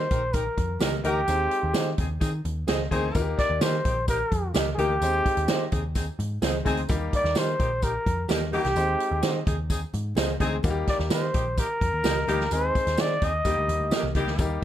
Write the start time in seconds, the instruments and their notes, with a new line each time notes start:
Already playing: trumpet C5
0.11 picked electric bass A#1, saxophone section D#4 G4 A#4, kick, closed hi-hat
0.33 saxophone section D#4 G4 A#4, trumpet A#4, kick, closed hi-hat, tambourine, muted conga
0.57 picked electric bass F2, kick, closed hi-hat, muted conga
0.80 picked electric bass C#2, saxophone section D#4 G4 A#4, clean electric guitar G4 A#4 D#5, snare, closed hi-hat, tambourine, high conga
1.04 picked electric bass D2, grand piano D#4 G4 A#4 D#5, saxophone section D#4 G4 A#4, trumpet G4, closed hi-hat, high conga
1.28 picked electric bass D#2, grand piano G#3 C4 D#4 C5, closed hi-hat, tambourine, muted conga
1.51 closed hi-hat
1.63 picked electric bass D#2
1.74 picked electric bass D#3, clean electric guitar G#4 C5 D#5, snare, closed hi-hat, tambourine, high conga
1.98 picked electric bass D#2, saxophone section C4 D#4 G#4, kick, closed hi-hat, low conga
2.20 picked electric bass D#3, saxophone section C4 D#4 G#4, kick, closed hi-hat, tambourine
2.45 picked electric bass D#2, closed hi-hat, muted conga
2.67 picked electric bass C#2, saxophone section C4 D#4 G#4, clean electric guitar G#4 C5 D#5, snare, closed hi-hat, tambourine, high conga
2.91 picked electric bass D2, saxophone section A#3 D#4 G#4, grand piano C4 D#4 G#4 C5, kick, closed hi-hat, high conga
3.14 picked electric bass D#2, grand piano A#3 D#4 F4 A#4, kick, closed hi-hat, tambourine, muted conga
3.21 grand piano G4
3.39 trumpet D5, kick, snare, closed hi-hat
3.50 picked electric bass D#2
3.61 picked electric bass D#3, clean electric guitar G4 A#4 D#5, trumpet C5, snare, closed hi-hat, tambourine, high conga
3.85 picked electric bass A#1, saxophone section A#3 D#4 G4, kick, closed hi-hat
4.08 saxophone section A#3 D#4 G4, trumpet A#4, kick, closed hi-hat, tambourine, muted conga
4.32 picked electric bass F2, kick, closed hi-hat, muted conga
4.54 picked electric bass C#2, saxophone section A#3 D#4 G4, clean electric guitar G4 A#4 D#5, snare, closed hi-hat, tambourine, high conga
4.74 trumpet G#4
4.78 picked electric bass D2, saxophone section A#3 D#4 G4, grand piano A#3 D#4 G4 A#4, trumpet G4, closed hi-hat, high conga
5.01 picked electric bass D#2, grand piano G#3 C4 D#4 C5, closed hi-hat, tambourine, muted conga
5.26 kick, closed hi-hat
5.37 picked electric bass D#2, closed hi-hat
5.48 picked electric bass D#3, clean electric guitar G#4 C5 D#5, snare, closed hi-hat, tambourine, high conga
5.72 picked electric bass D#2, saxophone section C4 D#4 G#4, kick, closed hi-hat, low conga
5.95 saxophone section C4 D#4 G#4, kick, closed hi-hat, tambourine, muted conga
6.19 picked electric bass G#2, closed hi-hat, muted conga
6.42 picked electric bass C#2, saxophone section C4 D#4 G#4, clean electric guitar G#4 C5 D#5, snare, closed hi-hat, tambourine, high conga
6.54 high conga
6.65 picked electric bass D2, grand piano G#3 C4 D#4 G#4, saxophone section C4 D#4 G#4, kick, closed hi-hat, high conga
6.77 closed hi-hat
6.89 picked electric bass D#2, grand piano G3 A#3 D#4 G4, kick, closed hi-hat, tambourine, muted conga
7.13 trumpet D5, kick, closed hi-hat
7.24 picked electric bass D#2, snare
7.35 picked electric bass D#3, clean electric guitar G4 A#4 D#5, trumpet C5, snare, closed hi-hat, tambourine, high conga
7.59 picked electric bass A#1, saxophone section A#3 D#4 G4, kick, closed hi-hat
7.82 saxophone section A#3 D#4 G4, trumpet A#4, kick, closed hi-hat, tambourine
8.06 picked electric bass F2, kick, closed hi-hat, muted conga
8.28 picked electric bass D#2, saxophone section A#3 D#4 G4, clean electric guitar G4 A#4 D#5, snare, closed hi-hat, tambourine, high conga
8.53 grand piano G3 A#3 D#4 G4, saxophone section A#3 D#4 G4, trumpet G4, open hi-hat, high conga
8.65 picked electric bass C2, snare, closed hi-hat
8.75 picked electric bass D#2, grand piano G#3 C4 D#4 C5, closed hi-hat, tambourine, muted conga
9.00 closed hi-hat
9.11 picked electric bass D#2
9.23 picked electric bass D#3, clean electric guitar G#4 C5 D#5, snare, closed hi-hat, tambourine, high conga
9.46 picked electric bass D#2, saxophone section C4 D#4 G#4, kick, closed hi-hat, low conga
9.70 saxophone section C4 D#4 G#4, kick, closed hi-hat, tambourine, muted conga
9.94 picked electric bass G#2, closed hi-hat, muted conga
10.15 picked electric bass C#2, saxophone section C4 D#4 G#4, clean electric guitar G#4 C5 D#5, snare, closed hi-hat, tambourine, high conga
10.40 picked electric bass D2, grand piano G#3 C4 D#4 G#4, saxophone section C4 D#4 G#4, kick, closed hi-hat, high conga
10.63 picked electric bass D#2, grand piano G3 A#3 D#4 F#4, kick, closed hi-hat, tambourine, muted conga
10.70 grand piano G4
10.87 trumpet D5, kick, snare, closed hi-hat
10.99 picked electric bass D#2, snare
11.10 picked electric bass D#3, clean electric guitar G4 A#4 D#5, trumpet C5, snare, closed hi-hat, tambourine, high conga
11.34 picked electric bass A#1, saxophone section A#3 D#4 G4, kick, closed hi-hat
11.58 saxophone section A#3 D#4 G4, trumpet A#4, kick, closed hi-hat, tambourine
11.81 picked electric bass F2, kick, closed hi-hat, muted conga
11.93 picked electric bass D#2
12.03 picked electric bass C#2, saxophone section A#3 D#4 G4, clean electric guitar G4 A#4 D#5, snare, closed hi-hat, tambourine, high conga
12.27 picked electric bass D2, grand piano G3 A#3 D#4 G4, saxophone section A#3 D#4 G4, closed hi-hat, high conga
12.41 snare
12.51 picked electric bass D#2, grand piano G#3 C4 D#4 G#4, trumpet C5, closed hi-hat, tambourine, muted conga
12.75 kick, closed hi-hat
12.87 picked electric bass D#2, snare, closed hi-hat
12.97 picked electric bass D#3, clean electric guitar G#4 C5 D#5, trumpet D5, snare, closed hi-hat, tambourine, high conga
13.22 picked electric bass D#2, saxophone section C4 D#4 G#4, trumpet D#5, kick, closed hi-hat
13.45 picked electric bass D#2, grand piano G3 A#3 D#4 G4, saxophone section A#3 D#4 G4, kick, closed hi-hat, tambourine, muted conga
13.58 picked electric bass D2
13.68 picked electric bass D#2, closed hi-hat, muted conga
13.80 picked electric bass D2
13.91 saxophone section A#3 D#4 G4, clean electric guitar G4 A#4 D#5, snare, closed hi-hat, tambourine, high conga
14.03 picked electric bass C2
14.15 picked electric bass C#2, grand piano G3 A#3 D#4 G4, saxophone section A#3 D#4 G4, kick, closed hi-hat, high conga
14.27 picked electric bass D2, snare
14.38 picked electric bass D#2, grand piano G3 A#3 D#4 G4, kick, closed hi-hat, tambourine, muted conga